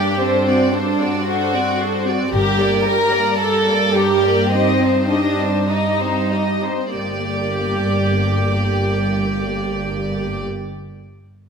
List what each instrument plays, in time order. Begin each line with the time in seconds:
Already playing: cello section G2, viola section D4 G4, violin section G4 D5
0.20 violin section C4 C5, viola section D4 A4
0.47 viola section C4 F#4, violin section D5
0.72 violin section D4 C5, viola section D4 A4
1.01 viola section C4 F#4, violin section D5
1.26 viola section D4 A4, violin section F#4 C5
1.53 viola section C4 F#4, violin section D5
1.80 viola section D4 A4, violin section C5
2.06 viola section C4 F#4, violin section D5
2.31 double bass section G1, cello section G2, viola section G3 G4, violin section G4 A#4
2.59 viola section A#3 A#4, violin section D5
2.85 viola section G3 G4, violin section A#4
3.12 viola section A#3 A#4, violin section D5
3.40 viola section G3 G4, violin section A4 A#4
3.68 viola section A#3 A#4, violin section D5
3.95 viola section G3 G4, violin section G4 A#4
4.23 viola section A#3 A#4, violin section D5
4.52 violin section C4 D#5, viola section D#4 G4
4.81 viola section C4 D#4, violin section C5
5.10 violin section D4 D#5, viola section D#4 G4
5.41 viola section C4 D#4, violin section C5
5.69 violin section D#4 D#5, viola section D#4 G4
6.00 viola section C4 D#4, violin section C5
6.31 viola section D#4 G4, violin section D#5
6.64 viola section C4 D#4, violin section C5
6.95 double bass section G1, cello section G2, viola section A#3 G4, violin section G4 D5